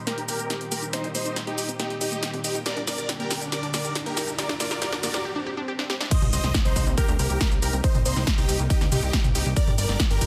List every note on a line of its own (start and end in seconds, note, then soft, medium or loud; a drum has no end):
0.00 5.21 A#2 medium
0.00 2.62 D#3 medium
0.00 5.21 G3 medium
0.00 2.62 C4 medium
0.00 5.21 G4 medium
0.00 riser medium
0.07 0.12 A#3 loud
0.07 0.21 G4 medium
0.07 0.21 A#4 medium
0.07 snare soft
0.07 closed hi-hat medium
0.07 shaker soft
0.18 0.21 D#4 medium
0.18 closed hi-hat soft
0.28 0.31 C4 medium
0.28 0.57 G4 medium
0.28 0.57 A#4 loud
0.28 open hi-hat loud
0.28 mid tom medium
0.28 shaker medium
0.39 0.47 A#3 medium
0.39 closed hi-hat soft
0.39 shaker soft
0.50 0.53 D#4 medium
0.50 snare medium
0.50 closed hi-hat medium
0.50 shaker soft
0.61 0.66 C4 medium
0.61 closed hi-hat soft
0.71 0.79 A#3 medium
0.71 0.86 G4 medium
0.71 0.86 A#4 medium
0.71 open hi-hat loud
0.71 shaker medium
0.82 0.87 D#4 medium
0.82 closed hi-hat soft
0.82 shaker soft
0.93 1.07 D#4 medium
0.93 0.98 D#4 loud
0.93 1.07 C5 loud
0.93 snare medium
0.93 closed hi-hat medium
0.93 shaker soft
1.04 1.09 C4 loud
1.04 closed hi-hat soft
1.04 mid tom medium
1.15 1.18 A#3 medium
1.15 1.36 D#4 medium
1.15 1.36 C5 medium
1.15 open hi-hat loud
1.15 shaker medium
1.26 1.33 D#4 medium
1.26 closed hi-hat soft
1.26 shaker soft
1.36 1.39 C4 medium
1.36 snare medium
1.36 closed hi-hat medium
1.36 shaker soft
1.47 1.52 A#3 medium
1.47 1.68 D#4 medium
1.47 1.68 G4 medium
1.47 1.68 G4 loud
1.47 closed hi-hat soft
1.58 1.63 D#4 medium
1.58 open hi-hat loud
1.58 shaker medium
1.68 1.73 C4 medium
1.68 closed hi-hat soft
1.68 shaker soft
1.79 1.84 A#3 loud
1.79 1.94 D#4 medium
1.79 1.94 G4 medium
1.79 snare medium
1.79 closed hi-hat medium
1.79 shaker soft
1.90 1.93 D#4 medium
1.90 closed hi-hat soft
2.01 2.04 C4 medium
2.01 2.29 D#4 medium
2.01 2.29 G4 loud
2.01 open hi-hat loud
2.01 mid tom medium
2.01 shaker medium
2.12 2.19 A#3 medium
2.12 closed hi-hat soft
2.12 shaker soft
2.23 2.26 D#4 medium
2.23 snare medium
2.23 closed hi-hat medium
2.23 shaker soft
2.33 2.38 C4 medium
2.33 closed hi-hat soft
2.33 mid tom medium
2.44 2.52 A#3 medium
2.44 2.58 D#4 medium
2.44 2.58 G4 medium
2.44 open hi-hat loud
2.44 shaker medium
2.55 2.60 D#4 medium
2.55 closed hi-hat soft
2.55 mid tom medium
2.55 shaker soft
2.66 5.22 D3 medium
2.66 5.22 D4 medium
2.66 2.71 G4 medium
2.66 2.80 A#4 medium
2.66 2.80 D5 medium
2.66 snare medium
2.66 closed hi-hat medium
2.66 shaker soft
2.77 2.82 D4 medium
2.77 closed hi-hat soft
2.77 mid tom medium
2.87 2.90 A#3 medium
2.87 3.09 A#4 medium
2.87 3.09 D5 medium
2.87 snare medium
2.87 open hi-hat loud
2.87 shaker medium
2.98 3.06 G4 medium
2.98 shaker soft
3.09 3.12 D4 medium
3.09 snare medium
3.09 closed hi-hat medium
3.09 shaker soft
3.20 3.25 A#3 medium
3.20 3.41 G4 medium
3.20 3.41 A#4 medium
3.20 closed hi-hat soft
3.31 3.36 G4 medium
3.31 snare medium
3.31 open hi-hat loud
3.31 shaker medium
3.41 3.46 D4 medium
3.41 closed hi-hat soft
3.41 shaker soft
3.52 3.57 G4 loud
3.52 3.66 A#4 medium
3.52 3.66 D5 loud
3.52 snare medium
3.52 closed hi-hat medium
3.52 shaker soft
3.63 3.68 D4 loud
3.63 closed hi-hat soft
3.74 3.77 A#3 medium
3.74 3.95 A#4 medium
3.74 3.95 D5 medium
3.74 snare medium
3.74 open hi-hat loud
3.74 mid tom medium
3.74 shaker medium
3.85 3.92 G4 medium
3.85 closed hi-hat soft
3.85 shaker soft
3.95 3.98 D4 medium
3.95 snare medium
3.95 closed hi-hat medium
3.95 shaker soft
4.06 4.11 A#3 medium
4.06 4.27 G4 medium
4.06 4.27 A#4 medium
4.06 closed hi-hat soft
4.17 4.22 G4 medium
4.17 snare medium
4.17 open hi-hat loud
4.17 shaker medium
4.28 4.33 D4 medium
4.28 closed hi-hat soft
4.28 shaker soft
4.38 4.43 G4 loud
4.38 4.53 A#4 medium
4.38 4.53 D5 loud
4.38 snare medium
4.38 closed hi-hat medium
4.38 shaker soft
4.49 4.54 D4 loud
4.49 snare medium
4.49 closed hi-hat soft
4.49 mid tom medium
4.60 4.63 A#3 medium
4.60 4.80 A#4 medium
4.60 4.80 D5 medium
4.60 4.80 D5 loud
4.60 snare loud
4.60 open hi-hat loud
4.60 shaker medium
4.71 4.78 G4 medium
4.71 snare medium
4.71 closed hi-hat soft
4.71 shaker soft
4.82 4.87 G4 loud
4.82 4.96 A#4 medium
4.82 4.96 D5 loud
4.82 snare loud
4.82 closed hi-hat medium
4.82 shaker soft
4.93 4.97 D4 loud
4.93 snare medium
4.93 closed hi-hat soft
5.03 5.06 A#3 medium
5.03 5.23 A#4 medium
5.03 5.23 D5 loud
5.03 5.23 D5 medium
5.03 snare loud
5.03 open hi-hat loud
5.03 shaker medium
5.14 5.21 G4 medium
5.14 snare medium
5.14 closed hi-hat soft
5.14 shaker soft
5.25 5.30 G4 loud
5.25 swell medium
5.36 5.41 D4 loud
5.47 5.51 G4 loud
5.57 5.62 D4 loud
5.68 5.73 G4 loud
5.79 5.84 D4 loud
5.79 snare medium
5.90 5.95 G4 loud
5.90 snare medium
6.00 6.05 D4 loud
6.00 snare medium
6.11 9.53 C3 medium
6.11 10.26 G3 medium
6.11 9.53 A#3 medium
6.11 9.53 D#4 medium
6.11 10.26 G4 loud
6.11 6.25 C5 medium
6.11 6.25 D#5 loud
6.11 kick loud
6.11 closed hi-hat loud
6.11 crash loud
6.11 impact medium
6.11 shaker soft
6.22 6.31 C2 medium
6.22 closed hi-hat soft
6.22 mid tom medium
6.33 6.41 C2 loud
6.33 6.54 C5 medium
6.33 6.54 D#5 loud
6.33 6.54 D#5 medium
6.33 open hi-hat loud
6.33 shaker medium
6.44 6.52 C2 medium
6.44 snare soft
6.44 closed hi-hat soft
6.44 shaker soft
6.54 kick loud
6.54 snare loud
6.54 closed hi-hat loud
6.54 shaker soft
6.65 6.74 C2 medium
6.65 6.86 D#4 medium
6.65 6.86 C5 loud
6.65 closed hi-hat soft
6.65 shaker soft
6.76 6.84 C2 loud
6.76 kick medium
6.76 open hi-hat loud
6.76 shaker medium
6.87 6.95 C2 loud
6.87 closed hi-hat soft
6.87 shaker soft
6.98 7.12 G4 medium
6.98 7.12 A#4 medium
6.98 kick loud
6.98 closed hi-hat medium
6.98 shaker soft
7.08 7.17 D2 medium
7.08 closed hi-hat soft
7.08 shaker soft
7.19 7.28 C2 loud
7.19 7.48 G4 medium
7.19 7.48 A#4 loud
7.19 open hi-hat loud
7.19 shaker medium
7.30 7.38 C2 medium
7.30 closed hi-hat soft
7.30 shaker soft
7.41 kick loud
7.41 snare loud
7.41 closed hi-hat loud
7.41 shaker soft
7.52 7.60 C2 medium
7.52 closed hi-hat soft
7.52 shaker soft
7.62 7.71 C2 loud
7.62 7.76 G4 medium
7.62 7.76 A#4 medium
7.62 open hi-hat loud
7.62 shaker medium
7.73 7.82 C2 medium
7.73 closed hi-hat soft
7.73 shaker soft
7.84 7.98 D#4 medium
7.84 7.98 C5 loud
7.84 kick loud
7.84 closed hi-hat medium
7.84 shaker soft
7.95 8.03 C2 medium
7.95 closed hi-hat soft
7.95 mid tom medium
7.95 shaker soft
8.05 8.14 C2 loud
8.05 8.27 D#4 medium
8.05 8.27 C5 loud
8.05 8.27 C5 medium
8.05 open hi-hat loud
8.05 shaker medium
8.16 8.25 C2 loud
8.16 snare soft
8.16 shaker soft
8.27 kick loud
8.27 snare loud
8.27 closed hi-hat loud
8.27 shaker soft
8.38 8.46 C2 medium
8.38 8.59 D#4 medium
8.38 8.59 G4 loud
8.38 closed hi-hat soft
8.38 shaker soft
8.49 8.57 C2 loud
8.49 open hi-hat loud
8.49 shaker medium
8.59 8.68 C2 medium
8.59 closed hi-hat soft
8.59 shaker soft
8.70 8.84 D#4 medium
8.70 8.84 G4 medium
8.70 kick loud
8.70 closed hi-hat medium
8.70 shaker soft
8.81 8.89 D2 medium
8.81 snare soft
8.81 closed hi-hat soft
8.81 shaker soft
8.92 9.00 C2 loud
8.92 9.20 D#4 medium
8.92 9.20 G4 medium
8.92 9.20 G4 loud
8.92 open hi-hat loud
8.92 mid tom medium
8.92 shaker medium
9.03 9.11 C2 medium
9.03 closed hi-hat soft
9.03 shaker soft
9.13 kick loud
9.13 snare loud
9.13 closed hi-hat medium
9.13 shaker soft
9.24 9.33 C2 medium
9.24 closed hi-hat soft
9.24 mid tom medium
9.24 shaker soft
9.35 9.44 C2 loud
9.35 9.49 D#4 medium
9.35 9.49 G4 medium
9.35 open hi-hat loud
9.35 shaker medium
9.46 9.54 C2 medium
9.46 closed hi-hat soft
9.46 shaker soft
9.56 10.26 A#2 medium
9.56 10.26 D3 medium
9.56 10.26 D4 medium
9.56 9.71 A#4 medium
9.56 9.71 D5 loud
9.56 kick loud
9.56 closed hi-hat medium
9.56 shaker soft
9.67 9.76 G1 medium
9.67 closed hi-hat soft
9.67 mid tom medium
9.78 9.87 G1 loud
9.78 9.99 A#4 medium
9.78 9.99 D5 loud
9.78 9.99 D5 medium
9.78 open hi-hat loud
9.78 shaker medium
9.89 9.97 G1 medium
9.89 snare soft
9.89 closed hi-hat soft
9.89 shaker soft
10.00 kick loud
10.00 snare loud
10.00 closed hi-hat medium
10.00 shaker soft
10.10 10.19 G1 medium
10.10 10.26 G4 medium
10.10 10.26 A#4 loud
10.10 10.26 A#4 medium
10.10 closed hi-hat soft
10.10 shaker soft
10.21 10.26 G1 loud
10.21 kick medium
10.21 open hi-hat loud
10.21 shaker medium